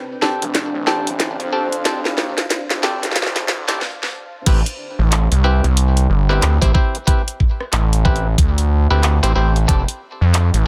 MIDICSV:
0, 0, Header, 1, 5, 480
1, 0, Start_track
1, 0, Key_signature, 0, "minor"
1, 0, Tempo, 652174
1, 1367, Time_signature, 4, 2, 24, 8
1, 7855, End_track
2, 0, Start_track
2, 0, Title_t, "Ambient pad"
2, 0, Program_c, 0, 92
2, 0, Note_on_c, 0, 60, 77
2, 0, Note_on_c, 0, 62, 88
2, 0, Note_on_c, 0, 72, 86
2, 0, Note_on_c, 0, 77, 74
2, 0, Note_on_c, 0, 79, 86
2, 0, Note_on_c, 0, 81, 76
2, 1001, Note_off_c, 0, 79, 0
2, 1003, Note_off_c, 0, 60, 0
2, 2806, Note_off_c, 0, 72, 0
2, 2807, Note_off_c, 0, 77, 0
2, 2808, Note_off_c, 0, 62, 0
2, 2808, Note_off_c, 0, 81, 0
2, 7855, End_track
3, 0, Start_track
3, 0, Title_t, "Clav"
3, 0, Program_c, 1, 7
3, 160, Note_on_c, 1, 60, 93
3, 160, Note_on_c, 1, 62, 83
3, 161, Note_on_c, 1, 67, 86
3, 162, Note_on_c, 1, 69, 99
3, 326, Note_off_c, 1, 60, 0
3, 326, Note_off_c, 1, 62, 0
3, 327, Note_off_c, 1, 67, 0
3, 327, Note_off_c, 1, 69, 0
3, 638, Note_on_c, 1, 62, 86
3, 638, Note_on_c, 1, 67, 87
3, 639, Note_on_c, 1, 60, 96
3, 639, Note_on_c, 1, 69, 105
3, 805, Note_off_c, 1, 67, 0
3, 806, Note_off_c, 1, 60, 0
3, 806, Note_off_c, 1, 62, 0
3, 806, Note_off_c, 1, 69, 0
3, 1123, Note_on_c, 1, 60, 83
3, 1123, Note_on_c, 1, 62, 72
3, 1123, Note_on_c, 1, 67, 74
3, 1123, Note_on_c, 1, 69, 88
3, 1232, Note_off_c, 1, 60, 0
3, 1232, Note_off_c, 1, 69, 0
3, 1233, Note_off_c, 1, 62, 0
3, 1233, Note_off_c, 1, 67, 0
3, 1363, Note_on_c, 1, 60, 81
3, 1364, Note_on_c, 1, 62, 77
3, 1364, Note_on_c, 1, 67, 75
3, 1364, Note_on_c, 1, 69, 91
3, 1473, Note_off_c, 1, 60, 0
3, 1473, Note_off_c, 1, 62, 0
3, 1473, Note_off_c, 1, 67, 0
3, 1473, Note_off_c, 1, 69, 0
3, 2082, Note_on_c, 1, 69, 104
3, 2083, Note_on_c, 1, 62, 86
3, 2084, Note_on_c, 1, 60, 93
3, 2084, Note_on_c, 1, 67, 86
3, 2247, Note_off_c, 1, 69, 0
3, 2248, Note_off_c, 1, 60, 0
3, 2248, Note_off_c, 1, 62, 0
3, 2249, Note_off_c, 1, 67, 0
3, 2706, Note_on_c, 1, 60, 87
3, 2708, Note_on_c, 1, 62, 81
3, 2708, Note_on_c, 1, 69, 95
3, 2709, Note_on_c, 1, 67, 81
3, 2803, Note_off_c, 1, 60, 0
3, 2804, Note_off_c, 1, 62, 0
3, 2804, Note_off_c, 1, 67, 0
3, 2804, Note_off_c, 1, 69, 0
3, 3286, Note_on_c, 1, 60, 84
3, 3286, Note_on_c, 1, 64, 76
3, 3286, Note_on_c, 1, 71, 92
3, 3287, Note_on_c, 1, 67, 73
3, 3394, Note_off_c, 1, 60, 0
3, 3394, Note_off_c, 1, 64, 0
3, 3394, Note_off_c, 1, 71, 0
3, 3395, Note_off_c, 1, 67, 0
3, 4004, Note_on_c, 1, 64, 86
3, 4004, Note_on_c, 1, 71, 97
3, 4005, Note_on_c, 1, 67, 84
3, 4006, Note_on_c, 1, 60, 90
3, 4168, Note_off_c, 1, 64, 0
3, 4168, Note_off_c, 1, 71, 0
3, 4169, Note_off_c, 1, 60, 0
3, 4169, Note_off_c, 1, 67, 0
3, 4631, Note_on_c, 1, 67, 81
3, 4632, Note_on_c, 1, 60, 87
3, 4632, Note_on_c, 1, 64, 80
3, 4632, Note_on_c, 1, 71, 94
3, 4837, Note_off_c, 1, 67, 0
3, 4838, Note_off_c, 1, 60, 0
3, 4838, Note_off_c, 1, 64, 0
3, 4838, Note_off_c, 1, 71, 0
3, 4869, Note_on_c, 1, 60, 97
3, 4869, Note_on_c, 1, 64, 86
3, 4869, Note_on_c, 1, 67, 88
3, 4869, Note_on_c, 1, 72, 105
3, 4942, Note_off_c, 1, 60, 0
3, 4942, Note_off_c, 1, 64, 0
3, 4942, Note_off_c, 1, 67, 0
3, 4942, Note_off_c, 1, 72, 0
3, 4963, Note_on_c, 1, 67, 78
3, 4964, Note_on_c, 1, 60, 81
3, 4964, Note_on_c, 1, 64, 79
3, 4964, Note_on_c, 1, 72, 89
3, 5128, Note_off_c, 1, 60, 0
3, 5128, Note_off_c, 1, 64, 0
3, 5128, Note_off_c, 1, 67, 0
3, 5129, Note_off_c, 1, 72, 0
3, 5203, Note_on_c, 1, 71, 90
3, 5204, Note_on_c, 1, 64, 78
3, 5204, Note_on_c, 1, 67, 75
3, 5205, Note_on_c, 1, 60, 84
3, 5313, Note_off_c, 1, 60, 0
3, 5313, Note_off_c, 1, 64, 0
3, 5313, Note_off_c, 1, 67, 0
3, 5313, Note_off_c, 1, 71, 0
3, 5923, Note_on_c, 1, 60, 91
3, 5924, Note_on_c, 1, 64, 84
3, 5924, Note_on_c, 1, 71, 105
3, 5925, Note_on_c, 1, 67, 83
3, 6088, Note_off_c, 1, 60, 0
3, 6088, Note_off_c, 1, 64, 0
3, 6088, Note_off_c, 1, 71, 0
3, 6089, Note_off_c, 1, 67, 0
3, 6554, Note_on_c, 1, 60, 86
3, 6554, Note_on_c, 1, 64, 82
3, 6554, Note_on_c, 1, 67, 82
3, 6555, Note_on_c, 1, 71, 96
3, 6758, Note_off_c, 1, 64, 0
3, 6759, Note_off_c, 1, 60, 0
3, 6759, Note_off_c, 1, 67, 0
3, 6759, Note_off_c, 1, 71, 0
3, 6793, Note_on_c, 1, 64, 89
3, 6793, Note_on_c, 1, 72, 112
3, 6794, Note_on_c, 1, 60, 102
3, 6794, Note_on_c, 1, 67, 90
3, 6864, Note_off_c, 1, 64, 0
3, 6864, Note_off_c, 1, 72, 0
3, 6865, Note_off_c, 1, 60, 0
3, 6865, Note_off_c, 1, 67, 0
3, 6885, Note_on_c, 1, 60, 81
3, 6885, Note_on_c, 1, 64, 76
3, 6886, Note_on_c, 1, 67, 77
3, 6886, Note_on_c, 1, 72, 92
3, 7049, Note_off_c, 1, 60, 0
3, 7049, Note_off_c, 1, 64, 0
3, 7049, Note_off_c, 1, 67, 0
3, 7049, Note_off_c, 1, 72, 0
3, 7125, Note_on_c, 1, 67, 78
3, 7125, Note_on_c, 1, 69, 96
3, 7126, Note_on_c, 1, 60, 83
3, 7126, Note_on_c, 1, 62, 80
3, 7234, Note_off_c, 1, 60, 0
3, 7234, Note_off_c, 1, 62, 0
3, 7234, Note_off_c, 1, 67, 0
3, 7234, Note_off_c, 1, 69, 0
3, 7855, End_track
4, 0, Start_track
4, 0, Title_t, "Analog synth bass"
4, 0, Program_c, 2, 38
4, 310, Note_on_c, 2, 29, 97
4, 390, Note_off_c, 2, 29, 0
4, 405, Note_on_c, 2, 29, 104
4, 529, Note_off_c, 2, 29, 0
4, 548, Note_on_c, 2, 33, 96
4, 1007, Note_off_c, 2, 33, 0
4, 1028, Note_on_c, 2, 41, 98
4, 1521, Note_off_c, 2, 41, 0
4, 1521, Note_on_c, 2, 40, 98
4, 1727, Note_off_c, 2, 40, 0
4, 1986, Note_on_c, 2, 29, 99
4, 2206, Note_off_c, 2, 29, 0
4, 2228, Note_on_c, 2, 29, 98
4, 2309, Note_off_c, 2, 29, 0
4, 2322, Note_on_c, 2, 29, 99
4, 2550, Note_off_c, 2, 29, 0
4, 2562, Note_on_c, 2, 33, 96
4, 2789, Note_off_c, 2, 33, 0
4, 3286, Note_on_c, 2, 33, 99
4, 3409, Note_off_c, 2, 33, 0
4, 3672, Note_on_c, 2, 33, 99
4, 3889, Note_off_c, 2, 33, 0
4, 3914, Note_on_c, 2, 36, 98
4, 4130, Note_off_c, 2, 36, 0
4, 4153, Note_on_c, 2, 36, 96
4, 4472, Note_off_c, 2, 36, 0
4, 4488, Note_on_c, 2, 31, 98
4, 4713, Note_off_c, 2, 31, 0
4, 4731, Note_on_c, 2, 38, 101
4, 4852, Note_off_c, 2, 38, 0
4, 4873, Note_on_c, 2, 33, 92
4, 4951, Note_off_c, 2, 33, 0
4, 5689, Note_on_c, 2, 33, 98
4, 6153, Note_off_c, 2, 33, 0
4, 6168, Note_on_c, 2, 38, 99
4, 6531, Note_off_c, 2, 38, 0
4, 6557, Note_on_c, 2, 38, 98
4, 6772, Note_off_c, 2, 38, 0
4, 6795, Note_on_c, 2, 33, 96
4, 6873, Note_off_c, 2, 33, 0
4, 6891, Note_on_c, 2, 33, 97
4, 7114, Note_off_c, 2, 33, 0
4, 7128, Note_on_c, 2, 29, 100
4, 7251, Note_off_c, 2, 29, 0
4, 7517, Note_on_c, 2, 41, 99
4, 7732, Note_off_c, 2, 41, 0
4, 7755, Note_on_c, 2, 33, 102
4, 7855, Note_off_c, 2, 33, 0
4, 7855, End_track
5, 0, Start_track
5, 0, Title_t, "Drums"
5, 164, Note_on_c, 9, 38, 81
5, 238, Note_off_c, 9, 38, 0
5, 310, Note_on_c, 9, 42, 54
5, 384, Note_off_c, 9, 42, 0
5, 402, Note_on_c, 9, 38, 82
5, 402, Note_on_c, 9, 42, 67
5, 476, Note_off_c, 9, 38, 0
5, 476, Note_off_c, 9, 42, 0
5, 641, Note_on_c, 9, 38, 82
5, 715, Note_off_c, 9, 38, 0
5, 788, Note_on_c, 9, 42, 57
5, 862, Note_off_c, 9, 42, 0
5, 881, Note_on_c, 9, 38, 90
5, 881, Note_on_c, 9, 42, 71
5, 955, Note_off_c, 9, 38, 0
5, 955, Note_off_c, 9, 42, 0
5, 1030, Note_on_c, 9, 42, 36
5, 1103, Note_off_c, 9, 42, 0
5, 1269, Note_on_c, 9, 42, 53
5, 1343, Note_off_c, 9, 42, 0
5, 1364, Note_on_c, 9, 38, 92
5, 1364, Note_on_c, 9, 42, 66
5, 1437, Note_off_c, 9, 38, 0
5, 1437, Note_off_c, 9, 42, 0
5, 1511, Note_on_c, 9, 38, 83
5, 1585, Note_off_c, 9, 38, 0
5, 1602, Note_on_c, 9, 38, 90
5, 1676, Note_off_c, 9, 38, 0
5, 1749, Note_on_c, 9, 38, 81
5, 1749, Note_on_c, 9, 42, 51
5, 1823, Note_off_c, 9, 38, 0
5, 1823, Note_off_c, 9, 42, 0
5, 1843, Note_on_c, 9, 38, 100
5, 1843, Note_on_c, 9, 42, 67
5, 1917, Note_off_c, 9, 38, 0
5, 1917, Note_off_c, 9, 42, 0
5, 1990, Note_on_c, 9, 38, 92
5, 1990, Note_on_c, 9, 42, 37
5, 2064, Note_off_c, 9, 38, 0
5, 2064, Note_off_c, 9, 42, 0
5, 2084, Note_on_c, 9, 38, 102
5, 2158, Note_off_c, 9, 38, 0
5, 2231, Note_on_c, 9, 38, 40
5, 2231, Note_on_c, 9, 42, 54
5, 2245, Note_off_c, 9, 38, 0
5, 2245, Note_on_c, 9, 38, 48
5, 2293, Note_off_c, 9, 38, 0
5, 2293, Note_on_c, 9, 38, 54
5, 2305, Note_off_c, 9, 42, 0
5, 2323, Note_off_c, 9, 38, 0
5, 2323, Note_on_c, 9, 38, 105
5, 2323, Note_on_c, 9, 42, 65
5, 2372, Note_off_c, 9, 38, 0
5, 2372, Note_on_c, 9, 38, 69
5, 2397, Note_off_c, 9, 42, 0
5, 2404, Note_off_c, 9, 38, 0
5, 2404, Note_on_c, 9, 38, 75
5, 2471, Note_off_c, 9, 38, 0
5, 2471, Note_on_c, 9, 38, 93
5, 2471, Note_on_c, 9, 42, 38
5, 2545, Note_off_c, 9, 38, 0
5, 2545, Note_off_c, 9, 42, 0
5, 2564, Note_on_c, 9, 38, 106
5, 2638, Note_off_c, 9, 38, 0
5, 2712, Note_on_c, 9, 38, 93
5, 2712, Note_on_c, 9, 42, 52
5, 2786, Note_off_c, 9, 38, 0
5, 2786, Note_off_c, 9, 42, 0
5, 2806, Note_on_c, 9, 38, 73
5, 2880, Note_off_c, 9, 38, 0
5, 2966, Note_on_c, 9, 38, 79
5, 3039, Note_off_c, 9, 38, 0
5, 3285, Note_on_c, 9, 42, 84
5, 3285, Note_on_c, 9, 49, 107
5, 3286, Note_on_c, 9, 36, 115
5, 3359, Note_off_c, 9, 36, 0
5, 3359, Note_off_c, 9, 42, 0
5, 3359, Note_off_c, 9, 49, 0
5, 3432, Note_on_c, 9, 42, 55
5, 3505, Note_off_c, 9, 42, 0
5, 3767, Note_on_c, 9, 39, 125
5, 3767, Note_on_c, 9, 42, 83
5, 3840, Note_off_c, 9, 39, 0
5, 3840, Note_off_c, 9, 42, 0
5, 3913, Note_on_c, 9, 42, 58
5, 3987, Note_off_c, 9, 42, 0
5, 4153, Note_on_c, 9, 42, 40
5, 4227, Note_off_c, 9, 42, 0
5, 4246, Note_on_c, 9, 42, 82
5, 4320, Note_off_c, 9, 42, 0
5, 4393, Note_on_c, 9, 42, 56
5, 4466, Note_off_c, 9, 42, 0
5, 4634, Note_on_c, 9, 39, 36
5, 4708, Note_off_c, 9, 39, 0
5, 4728, Note_on_c, 9, 39, 122
5, 4728, Note_on_c, 9, 42, 87
5, 4801, Note_off_c, 9, 39, 0
5, 4801, Note_off_c, 9, 42, 0
5, 4873, Note_on_c, 9, 36, 64
5, 4873, Note_on_c, 9, 42, 52
5, 4947, Note_off_c, 9, 36, 0
5, 4947, Note_off_c, 9, 42, 0
5, 4966, Note_on_c, 9, 36, 107
5, 5040, Note_off_c, 9, 36, 0
5, 5114, Note_on_c, 9, 42, 40
5, 5187, Note_off_c, 9, 42, 0
5, 5206, Note_on_c, 9, 36, 121
5, 5208, Note_on_c, 9, 42, 86
5, 5280, Note_off_c, 9, 36, 0
5, 5282, Note_off_c, 9, 42, 0
5, 5356, Note_on_c, 9, 42, 57
5, 5430, Note_off_c, 9, 42, 0
5, 5448, Note_on_c, 9, 36, 63
5, 5521, Note_off_c, 9, 36, 0
5, 5597, Note_on_c, 9, 37, 53
5, 5671, Note_off_c, 9, 37, 0
5, 5686, Note_on_c, 9, 39, 124
5, 5686, Note_on_c, 9, 42, 88
5, 5760, Note_off_c, 9, 39, 0
5, 5760, Note_off_c, 9, 42, 0
5, 5836, Note_on_c, 9, 42, 58
5, 5909, Note_off_c, 9, 42, 0
5, 5928, Note_on_c, 9, 36, 112
5, 6001, Note_off_c, 9, 36, 0
5, 6004, Note_on_c, 9, 42, 40
5, 6077, Note_off_c, 9, 42, 0
5, 6169, Note_on_c, 9, 36, 110
5, 6170, Note_on_c, 9, 42, 82
5, 6242, Note_off_c, 9, 36, 0
5, 6244, Note_off_c, 9, 42, 0
5, 6315, Note_on_c, 9, 42, 57
5, 6389, Note_off_c, 9, 42, 0
5, 6648, Note_on_c, 9, 39, 127
5, 6648, Note_on_c, 9, 42, 88
5, 6721, Note_off_c, 9, 39, 0
5, 6721, Note_off_c, 9, 42, 0
5, 6797, Note_on_c, 9, 42, 54
5, 6871, Note_off_c, 9, 42, 0
5, 7036, Note_on_c, 9, 42, 41
5, 7110, Note_off_c, 9, 42, 0
5, 7129, Note_on_c, 9, 36, 123
5, 7130, Note_on_c, 9, 42, 82
5, 7203, Note_off_c, 9, 36, 0
5, 7204, Note_off_c, 9, 42, 0
5, 7275, Note_on_c, 9, 42, 57
5, 7349, Note_off_c, 9, 42, 0
5, 7610, Note_on_c, 9, 39, 127
5, 7610, Note_on_c, 9, 42, 86
5, 7684, Note_off_c, 9, 39, 0
5, 7684, Note_off_c, 9, 42, 0
5, 7758, Note_on_c, 9, 42, 56
5, 7831, Note_off_c, 9, 42, 0
5, 7855, End_track
0, 0, End_of_file